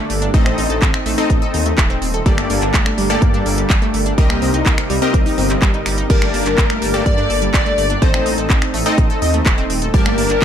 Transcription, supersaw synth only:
0.00 0.31 A#3 medium
0.00 0.31 G4 medium
0.00 0.31 A4 medium
0.00 0.31 D5 loud
0.34 1.15 C4 medium
0.34 1.15 D#4 medium
0.34 1.15 A4 medium
0.34 1.15 D#5 loud
1.18 2.23 C4 medium
1.18 2.23 D#4 medium
1.18 2.23 A4 medium
1.18 2.23 D#5 loud
2.26 3.07 A#3 medium
2.26 3.07 G4 medium
2.26 3.07 A4 medium
2.26 3.07 D5 loud
3.10 4.15 A#3 medium
3.10 4.15 G4 medium
3.10 4.15 A4 medium
3.10 4.15 D5 loud
4.18 4.99 C4 medium
4.18 4.99 G4 medium
4.18 4.99 A#4 medium
4.18 4.99 D#5 loud
5.02 6.07 C4 medium
5.02 6.07 G4 medium
5.02 6.07 A#4 medium
5.02 6.07 D#5 loud
6.10 6.91 A#3 medium
6.10 6.91 G4 medium
6.10 6.91 D5 loud
6.10 6.91 A5 medium
6.94 7.99 A#3 loud
6.94 7.99 G4 medium
6.94 7.99 A4 medium
6.94 7.99 D5 loud
8.02 8.83 C4 medium
8.02 8.83 D#4 medium
8.02 8.83 A4 medium
8.02 8.83 D#5 loud
8.86 9.91 C4 loud
8.86 9.91 D#4 medium
8.86 9.91 A4 medium
8.86 9.91 D#5 loud
9.94 10.45 A#3 medium
9.94 10.45 G4 medium
9.94 10.45 D5 loud
9.94 10.45 A5 medium

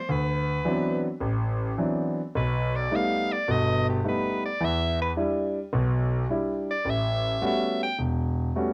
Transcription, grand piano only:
0.09 0.58 D2 medium
0.65 1.05 E3 medium
0.65 1.05 F#3 medium
0.65 1.06 B3 soft
0.65 1.06 C4 medium
0.65 1.06 D4 medium
1.20 1.70 A1 medium
1.78 2.19 E3 medium
1.78 2.18 F#3 soft
1.78 2.19 B3 soft
1.78 2.19 C4 soft
1.78 2.19 D4 medium
2.35 2.84 B1 medium
2.91 3.32 G3 medium
2.91 3.32 A3 soft
2.91 3.32 B3 soft
2.91 3.32 D#4 medium
3.48 3.97 G1 medium
3.48 3.97 B2 medium
4.04 4.44 G3 medium
4.04 4.45 A3 soft
4.04 4.45 B3 soft
4.04 4.45 D#4 medium
4.60 5.10 E2 medium
4.60 5.10 E3 medium
5.17 5.57 G3 medium
5.17 5.57 D4 medium
5.17 5.57 E4 medium
5.73 6.22 B1 medium
5.73 6.22 B2 medium
6.29 6.70 G3 medium
6.29 6.70 D4 soft
6.29 6.70 E4 medium
6.85 7.35 A1 medium
7.42 7.82 G3 medium
7.42 7.82 A3 soft
7.42 7.82 B3 medium
7.42 7.82 C#4 soft
7.42 7.83 F#4 medium
7.99 8.48 E1 medium
8.56 8.73 G3 soft
8.56 8.73 A3 soft
8.56 8.73 B3 soft
8.56 8.73 C#4 soft
8.56 8.73 F#4 medium

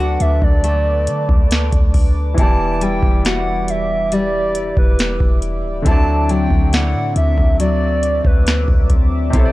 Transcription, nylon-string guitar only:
0.00 2.38 D3 medium
0.00 0.63 A3 medium
0.00 2.46 F#4 medium
0.64 2.47 A3 medium
2.38 5.86 E3 medium
2.81 4.11 G3 medium
3.25 6.72 F#4 medium
4.12 5.94 G3 medium
5.86 9.36 D3 medium
6.29 7.58 F#3 medium
6.73 9.52 E4 medium
7.60 9.42 F#3 medium
9.33 9.52 C3 medium

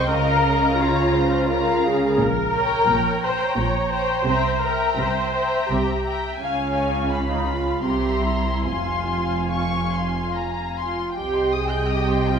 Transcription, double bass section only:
0.11 2.15 C#2 medium
2.19 2.78 A#1 medium
2.88 3.45 A#1 medium
3.56 4.14 A#1 medium
4.25 4.86 C2 medium
4.97 5.59 C2 medium
5.70 6.28 C2 medium
6.38 7.80 C#2 soft
7.84 8.65 C2 soft
8.67 10.96 F1 soft
11.17 12.39 C2 soft

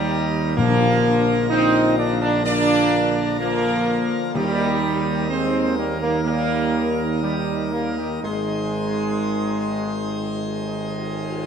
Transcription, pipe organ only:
0.00 0.54 D#3 medium
0.00 0.56 A#3 medium
0.00 0.54 D#4 medium
0.00 0.56 A#4 medium
0.58 4.35 D3 medium
0.58 4.35 F3 medium
0.58 4.31 A#3 medium
0.58 4.31 A#4 medium
4.35 8.22 D#3 medium
4.35 8.20 A#3 medium
4.35 8.22 D#4 medium
4.35 8.20 A#4 medium
8.24 11.46 D#3 medium
8.24 11.46 G#3 medium
8.24 11.46 D#4 medium
8.24 11.46 C5 medium

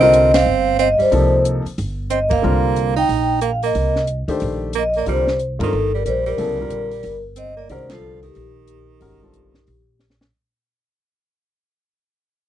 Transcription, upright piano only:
0.00 0.29 D3 medium
0.00 0.29 G3 soft
0.00 0.29 C4 soft
0.00 0.30 F4 medium
0.00 0.30 A#4 medium
1.12 1.61 C3 medium
1.12 1.61 F3 medium
1.12 1.61 A#3 medium
1.12 1.62 D#4 medium
1.12 1.62 A4 medium
2.42 2.92 D3 medium
2.42 2.93 G3 medium
2.42 2.93 C4 medium
2.42 2.93 F4 medium
2.42 2.93 A#4 medium
4.28 4.71 D#3 medium
4.28 4.71 A3 medium
4.28 4.71 D4 medium
4.28 4.72 G4 medium
4.28 4.72 C5 medium
5.06 5.25 D3 medium
5.06 5.25 G3 medium
5.06 5.25 C4 soft
5.06 5.26 F4 medium
5.06 5.26 A#4 medium
5.59 5.71 D3 medium
5.59 5.71 G3 medium
5.59 5.71 C4 medium
5.59 5.71 F4 medium
5.59 5.72 A#4 medium
6.37 6.56 C#3 medium
6.37 6.57 F#3 medium
6.37 6.57 B3 medium
6.37 6.57 E4 medium
6.37 6.57 A4 medium
6.59 6.88 D3 medium
6.59 6.88 G3 soft
6.59 6.89 C4 soft
6.59 6.89 F4 soft
6.59 6.89 A#4 medium
7.69 7.88 D#3 medium
7.69 7.89 G#3 medium
7.69 7.89 C#4 medium
7.69 7.89 F#4 medium
7.69 7.89 A#4 medium
7.91 8.19 D3 medium
7.91 8.19 G3 soft
7.91 8.20 C4 medium
7.91 8.20 F4 medium
7.91 8.20 A4 medium
9.00 9.19 D#3 medium
9.00 9.19 G#3 soft
9.00 9.20 C#4 medium
9.00 9.20 F#4 medium
9.00 9.20 A#4 medium
9.22 9.51 D3 soft
9.22 9.51 G3 soft
9.22 9.51 C4 soft
9.22 9.51 F4 soft
9.22 9.51 A4 medium

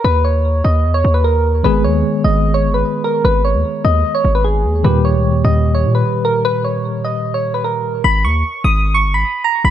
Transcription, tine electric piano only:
1.63 4.80 D#3 medium
1.63 4.80 G#3 medium
1.63 4.81 B3 medium
1.63 4.81 G#4 medium
4.83 8.01 A#2 medium
4.83 8.00 D#3 medium
4.83 8.00 G3 medium
4.83 8.01 G4 medium

